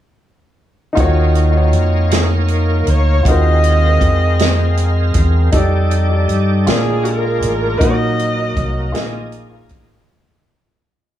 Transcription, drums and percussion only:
0.97 kick, closed hi-hat
1.35 closed hi-hat
1.73 closed hi-hat
2.11 snare, closed hi-hat
2.48 closed hi-hat
2.87 closed hi-hat
3.25 kick, closed hi-hat
3.64 closed hi-hat
4.01 kick, closed hi-hat
4.39 snare, closed hi-hat
4.77 closed hi-hat
5.14 kick, closed hi-hat
5.52 kick, closed hi-hat
5.91 closed hi-hat
6.29 closed hi-hat
6.67 snare, closed hi-hat
7.05 closed hi-hat
7.42 closed hi-hat
7.81 kick, closed hi-hat
8.19 closed hi-hat
8.57 kick, closed hi-hat
8.95 snare, closed hi-hat
9.32 closed hi-hat
9.69 kick, closed hi-hat

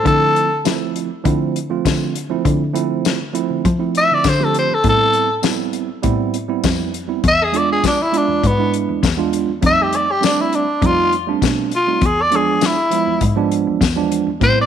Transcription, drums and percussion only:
0.06 kick, closed hi-hat
0.36 closed hi-hat
0.65 snare, closed hi-hat, tambourine
0.96 closed hi-hat
1.25 kick, closed hi-hat
1.56 closed hi-hat
1.85 kick, snare, closed hi-hat, tambourine
2.16 closed hi-hat
2.45 kick, closed hi-hat
2.76 closed hi-hat
3.05 snare, closed hi-hat, tambourine
3.35 closed hi-hat
3.65 kick, closed hi-hat
3.95 closed hi-hat
4.24 kick, snare, closed hi-hat, tambourine
4.54 closed hi-hat
4.84 kick, closed hi-hat
5.13 closed hi-hat
5.43 snare, closed hi-hat, tambourine
5.73 closed hi-hat
6.03 kick, closed hi-hat
6.34 closed hi-hat
6.64 kick, snare, closed hi-hat, tambourine
6.94 closed hi-hat
7.24 kick, closed hi-hat
7.54 closed hi-hat
7.84 kick, snare, closed hi-hat, tambourine
8.14 closed hi-hat
8.43 kick, closed hi-hat
8.74 closed hi-hat
9.03 kick, snare, closed hi-hat, tambourine
9.33 closed hi-hat
9.63 kick, closed hi-hat
9.93 closed hi-hat
10.23 snare, closed hi-hat, tambourine
10.53 closed hi-hat
10.82 kick, closed hi-hat
11.12 closed hi-hat
11.42 kick, snare, closed hi-hat, tambourine
11.71 closed hi-hat
12.02 kick, closed hi-hat
12.32 closed hi-hat
12.61 snare, closed hi-hat, tambourine
12.91 closed hi-hat
13.21 kick, closed hi-hat
13.52 closed hi-hat
13.81 kick, snare, closed hi-hat, tambourine
14.12 closed hi-hat
14.41 kick, closed hi-hat

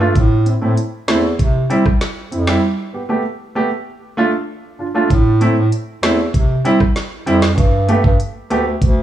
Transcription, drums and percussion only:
0.15 kick, closed hi-hat
0.46 closed hi-hat
0.77 closed hi-hat
1.08 cross-stick, snare, closed hi-hat
1.39 kick, closed hi-hat
1.70 closed hi-hat
1.86 kick, cross-stick
2.01 snare, closed hi-hat
2.32 closed hi-hat
2.47 cross-stick, snare
5.10 kick, closed hi-hat
5.41 closed hi-hat
5.72 closed hi-hat
6.03 cross-stick, snare, closed hi-hat
6.34 kick, closed hi-hat
6.65 closed hi-hat
6.80 kick, cross-stick
6.96 snare, closed hi-hat
7.27 closed hi-hat
7.42 cross-stick, snare
7.58 kick, closed hi-hat
7.89 closed hi-hat
8.04 kick
8.20 closed hi-hat
8.51 closed hi-hat
8.82 kick, closed hi-hat

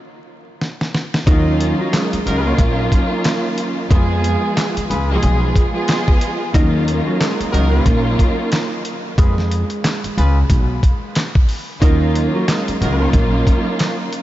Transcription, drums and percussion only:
0.61 snare
0.81 snare
0.94 snare
1.14 snare
1.27 kick, closed hi-hat
1.60 closed hi-hat
1.93 snare, clap, closed hi-hat
2.13 closed hi-hat
2.27 closed hi-hat
2.58 kick, closed hi-hat
2.92 kick, closed hi-hat
3.24 snare, clap, closed hi-hat
3.58 closed hi-hat
3.91 kick, closed hi-hat
4.24 closed hi-hat
4.57 snare, clap, closed hi-hat
4.77 closed hi-hat
4.91 closed hi-hat
5.23 closed hi-hat
5.56 kick, closed hi-hat
5.88 snare, clap, closed hi-hat
6.08 kick
6.21 closed hi-hat
6.54 kick, closed hi-hat
6.88 closed hi-hat
7.21 snare, clap, closed hi-hat
7.41 closed hi-hat
7.54 closed hi-hat
7.86 kick, closed hi-hat
8.19 kick, closed hi-hat
8.52 snare, clap, closed hi-hat
8.85 closed hi-hat
9.18 kick, closed hi-hat
9.38 snare
9.52 closed hi-hat
9.70 closed hi-hat
9.84 snare, clap, closed hi-hat
10.04 closed hi-hat
10.18 closed hi-hat
10.50 kick, closed hi-hat
10.83 kick, closed hi-hat
11.15 snare, clap, closed hi-hat
11.35 kick
11.49 open hi-hat
11.82 kick, closed hi-hat
12.15 closed hi-hat
12.48 snare, clap, closed hi-hat
12.68 closed hi-hat
12.82 closed hi-hat
13.13 kick, closed hi-hat
13.47 kick, closed hi-hat
13.79 snare, clap, closed hi-hat
14.13 closed hi-hat

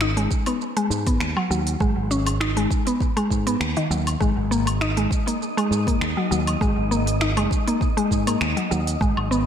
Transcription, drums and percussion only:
0.01 finger snap, shaker
0.17 open hi-hat
0.31 kick, shaker
0.46 open hi-hat, low woodblock, shaker
0.61 shaker
0.77 open hi-hat
0.91 shaker
1.07 kick, open hi-hat, shaker
1.20 finger snap, shaker
1.37 low woodblock
1.51 shaker
1.67 open hi-hat, shaker
1.80 kick, shaker
2.11 shaker
2.27 open hi-hat, low woodblock, shaker
2.41 finger snap, shaker
2.57 open hi-hat
2.70 kick, shaker
2.87 open hi-hat, shaker
3.00 kick, shaker
3.17 open hi-hat, low woodblock
3.31 kick, shaker
3.47 open hi-hat, shaker
3.61 finger snap, shaker
3.77 open hi-hat
3.92 shaker
4.07 open hi-hat, low woodblock, shaker
4.21 kick, shaker
4.52 shaker
4.67 open hi-hat, low woodblock, shaker
4.81 finger snap, shaker
4.97 open hi-hat
5.11 kick, shaker
5.28 open hi-hat, shaker
5.42 shaker
5.58 open hi-hat, low woodblock
5.72 shaker
5.87 kick, open hi-hat, shaker
6.01 finger snap, shaker
6.32 shaker
6.47 open hi-hat, low woodblock, shaker
6.61 kick, shaker
6.92 shaker
7.07 open hi-hat, shaker
7.21 finger snap, shaker
7.37 open hi-hat, low woodblock
7.51 kick, shaker
7.68 open hi-hat, shaker
7.81 kick, shaker
7.98 open hi-hat
8.11 kick, shaker
8.27 open hi-hat, low woodblock, shaker
8.41 finger snap, shaker
8.57 open hi-hat
8.72 shaker
8.87 open hi-hat, shaker
9.01 kick, shaker
9.17 low woodblock
9.32 shaker

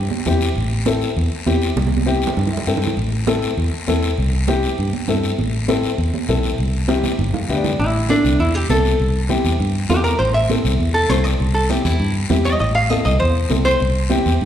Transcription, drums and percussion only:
0.11 high conga
0.26 high conga, low conga, short guiro
0.41 high conga, short guiro
0.56 long guiro
0.71 high conga
0.86 high conga, short guiro
1.01 short guiro
1.17 long guiro
1.46 high conga, short guiro
1.62 high conga, short guiro
1.77 high conga, long guiro
1.87 high conga
1.97 high conga
2.07 short guiro
2.22 short guiro
2.27 low conga
2.37 low conga, long guiro
2.47 low conga
2.57 low conga
2.67 short guiro
2.77 low conga
2.82 short guiro
2.87 low conga
2.97 long guiro
3.12 high conga
3.27 high conga, short guiro
3.42 short guiro
3.58 long guiro
3.88 high conga, short guiro
4.03 high conga, short guiro
4.18 long guiro
4.33 high conga
4.48 high conga, short guiro
4.63 short guiro
4.78 long guiro
4.93 high conga
5.08 high conga, low conga, short guiro
5.23 high conga, short guiro
5.38 high conga, long guiro
5.54 high conga
5.69 high conga, short guiro
5.83 short guiro
5.98 long guiro
6.14 high conga
6.29 high conga, short guiro
6.43 high conga, short guiro
6.58 long guiro
6.74 high conga
6.88 high conga, short guiro
7.04 high conga, short guiro
7.19 low conga, long guiro
7.34 low conga
7.50 short guiro
7.64 low conga, short guiro
7.80 high conga, long guiro
8.10 high conga, short guiro
8.25 short guiro
8.39 high conga, long guiro
8.70 high conga, short guiro
8.85 short guiro
9.00 high conga, long guiro
9.30 high conga, short guiro
9.45 short guiro
9.60 high conga, long guiro
9.90 high conga, low conga, short guiro
10.04 short guiro
10.20 high conga, long guiro
10.50 high conga, short guiro
10.65 short guiro
10.80 high conga, long guiro
11.10 high conga, short guiro
11.25 short guiro
11.40 high conga, long guiro
11.70 high conga, short guiro
11.85 low conga, short guiro
12.00 high conga, long guiro
12.30 high conga, low conga, short guiro
12.45 short guiro
12.60 high conga, long guiro
12.90 high conga, short guiro
13.05 short guiro
13.20 high conga, long guiro
13.50 high conga, short guiro
13.65 short guiro
13.80 high conga, long guiro
14.10 high conga, short guiro
14.26 short guiro
14.41 high conga, long guiro

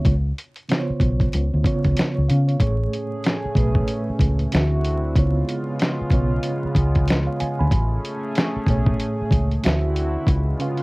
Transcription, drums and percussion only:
0.05 kick, closed hi-hat
0.38 closed hi-hat
0.56 closed hi-hat
0.69 snare, closed hi-hat
1.00 kick, closed hi-hat
1.20 kick, closed hi-hat
1.33 closed hi-hat
1.64 kick, closed hi-hat
1.84 kick, closed hi-hat
1.97 snare, closed hi-hat
2.30 closed hi-hat
2.49 closed hi-hat
2.60 kick, closed hi-hat
2.94 closed hi-hat
3.24 snare, closed hi-hat
3.55 kick, closed hi-hat
3.75 kick
3.88 closed hi-hat
4.19 kick, closed hi-hat
4.39 closed hi-hat
4.52 snare, closed hi-hat
4.85 closed hi-hat
5.15 kick, closed hi-hat
5.49 closed hi-hat
5.79 snare, closed hi-hat
6.11 kick, closed hi-hat
6.43 closed hi-hat
6.75 kick, closed hi-hat
6.95 kick, closed hi-hat
7.08 snare, closed hi-hat
7.40 closed hi-hat
7.71 kick, closed hi-hat
8.05 closed hi-hat
8.35 snare, closed hi-hat
8.67 kick, closed hi-hat
8.86 kick
9.00 closed hi-hat
9.31 kick, closed hi-hat
9.51 closed hi-hat
9.64 snare, closed hi-hat
9.96 closed hi-hat
10.27 kick, closed hi-hat
10.60 closed hi-hat
10.77 closed hi-hat

